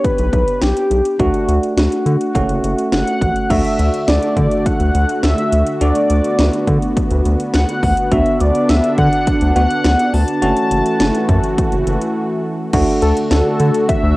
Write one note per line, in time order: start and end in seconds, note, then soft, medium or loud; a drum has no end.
0.00 1.15 B3 medium
0.00 1.15 D4 medium
0.00 1.15 G4 medium
0.04 0.63 B4 loud
0.04 kick medium
0.04 closed hi-hat medium
0.18 0.29 B1 medium
0.18 closed hi-hat soft
0.33 0.44 B1 loud
0.33 kick medium
0.33 closed hi-hat medium
0.48 closed hi-hat soft
0.61 0.73 B1 medium
0.61 1.19 G4 loud
0.61 snare loud
0.61 closed hi-hat medium
0.77 closed hi-hat soft
0.91 1.01 B1 loud
0.91 closed hi-hat medium
1.05 closed hi-hat medium
1.19 1.30 D2 loud
1.19 2.32 A3 medium
1.19 2.32 D4 medium
1.19 2.32 F#4 medium
1.19 1.73 F#4 loud
1.19 kick loud
1.19 closed hi-hat medium
1.34 closed hi-hat soft
1.48 1.59 D2 loud
1.48 closed hi-hat medium
1.63 closed hi-hat soft
1.77 1.88 D2 loud
1.77 2.89 F#4 medium
1.77 snare loud
1.77 closed hi-hat medium
1.92 closed hi-hat medium
2.06 2.17 D3 loud
2.06 closed hi-hat medium
2.21 closed hi-hat soft
2.35 2.46 F#1 loud
2.35 3.48 A3 medium
2.35 3.48 C#4 medium
2.35 3.48 F#4 medium
2.35 kick medium
2.35 closed hi-hat medium
2.49 2.60 F#1 medium
2.49 closed hi-hat soft
2.64 2.74 F#1 loud
2.64 closed hi-hat medium
2.79 closed hi-hat soft
2.92 3.03 F#1 medium
2.92 3.52 F#5 loud
2.92 snare loud
2.92 closed hi-hat medium
3.08 closed hi-hat medium
3.21 3.32 A1 medium
3.21 kick medium
3.21 closed hi-hat medium
3.36 closed hi-hat medium
3.50 3.61 D2 medium
3.50 8.08 D3 medium
3.50 5.79 A3 medium
3.50 5.77 A3 medium
3.50 5.77 D4 medium
3.50 5.77 F#4 medium
3.50 8.08 F#4 medium
3.50 4.10 E5 loud
3.50 kick loud
3.50 closed hi-hat medium
3.50 crash medium
3.65 closed hi-hat soft
3.79 3.90 D2 loud
3.79 closed hi-hat medium
3.94 closed hi-hat soft
4.08 4.19 D2 loud
4.08 4.67 D5 medium
4.08 snare loud
4.08 closed hi-hat medium
4.23 closed hi-hat medium
4.37 4.47 D3 loud
4.37 kick medium
4.37 closed hi-hat medium
4.51 closed hi-hat soft
4.66 5.23 F#5 loud
4.66 kick medium
4.66 closed hi-hat medium
4.80 4.91 D2 medium
4.80 closed hi-hat medium
4.95 5.05 D2 loud
4.95 closed hi-hat medium
5.09 closed hi-hat soft
5.23 5.34 D2 medium
5.23 5.77 E5 loud
5.23 snare loud
5.23 closed hi-hat medium
5.38 closed hi-hat medium
5.52 5.63 D2 loud
5.52 closed hi-hat medium
5.67 closed hi-hat medium
5.81 5.92 D2 loud
5.81 8.08 A3 medium
5.81 10.39 B3 medium
5.81 8.08 D4 medium
5.81 8.08 F#4 medium
5.81 6.93 D5 medium
5.81 closed hi-hat medium
5.95 closed hi-hat soft
6.10 6.21 D2 loud
6.10 closed hi-hat medium
6.24 closed hi-hat soft
6.39 6.49 D2 loud
6.39 snare loud
6.39 closed hi-hat medium
6.53 closed hi-hat medium
6.67 6.78 D3 loud
6.67 kick medium
6.67 closed hi-hat medium
6.82 closed hi-hat soft
6.97 kick medium
6.97 closed hi-hat medium
7.11 7.22 D2 loud
7.11 closed hi-hat medium
7.25 7.36 D2 loud
7.25 closed hi-hat medium
7.40 closed hi-hat soft
7.54 7.65 D2 medium
7.54 8.14 F#5 loud
7.54 snare loud
7.54 closed hi-hat medium
7.69 closed hi-hat medium
7.83 7.94 D2 medium
7.83 kick medium
7.83 open hi-hat medium
7.97 closed hi-hat medium
8.12 8.22 D2 loud
8.12 10.40 D3 medium
8.12 9.53 B3 medium
8.12 9.53 D4 medium
8.12 10.40 D4 medium
8.12 9.53 F#4 medium
8.12 8.42 E5 medium
8.12 kick loud
8.12 closed hi-hat medium
8.26 closed hi-hat medium
8.40 8.51 D2 loud
8.40 8.71 D5 medium
8.40 closed hi-hat medium
8.55 closed hi-hat soft
8.69 8.80 D2 loud
8.69 8.98 E5 loud
8.69 snare loud
8.69 closed hi-hat medium
8.84 closed hi-hat medium
8.98 9.09 D3 loud
8.98 9.52 F#5 loud
8.98 kick medium
8.98 closed hi-hat medium
9.13 closed hi-hat soft
9.27 kick medium
9.27 closed hi-hat medium
9.41 9.52 D2 medium
9.41 closed hi-hat medium
9.56 9.67 D2 loud
9.56 10.42 B3 soft
9.56 10.42 D4 soft
9.56 10.41 F#4 medium
9.56 10.15 F#5 loud
9.56 closed hi-hat medium
9.71 closed hi-hat soft
9.85 9.95 D2 medium
9.85 snare loud
9.85 closed hi-hat medium
9.99 closed hi-hat medium
10.14 10.24 D2 loud
10.14 12.16 A5 loud
10.14 open hi-hat medium
10.28 closed hi-hat medium
10.42 10.53 F#1 loud
10.42 12.71 E3 medium
10.42 12.69 A3 medium
10.42 12.71 A3 medium
10.42 12.69 C#4 medium
10.42 12.69 F#4 medium
10.42 12.71 F#4 medium
10.42 closed hi-hat medium
10.57 closed hi-hat medium
10.71 10.82 F#1 loud
10.71 closed hi-hat medium
10.86 closed hi-hat soft
11.00 11.11 F#1 loud
11.00 snare loud
11.00 closed hi-hat medium
11.15 closed hi-hat medium
11.29 11.40 F#2 loud
11.29 kick medium
11.29 closed hi-hat medium
11.44 closed hi-hat soft
11.58 kick medium
11.58 closed hi-hat medium
11.72 11.83 F#1 medium
11.72 closed hi-hat medium
11.87 11.97 F#1 loud
11.87 closed hi-hat medium
12.02 closed hi-hat soft
12.73 12.84 D2 loud
12.73 14.17 D3 medium
12.73 14.17 A3 medium
12.73 14.17 D4 medium
12.73 14.17 F#4 medium
12.73 kick loud
12.73 closed hi-hat medium
12.73 crash loud
13.02 13.13 D2 medium
13.02 13.15 A4 medium
13.02 closed hi-hat medium
13.17 closed hi-hat soft
13.31 13.42 D2 loud
13.31 13.85 A4 loud
13.31 snare loud
13.31 closed hi-hat medium
13.60 13.71 D3 loud
13.60 closed hi-hat medium
13.74 closed hi-hat medium
13.89 14.17 E5 loud
13.89 kick medium
13.89 closed hi-hat medium
14.03 14.14 D2 loud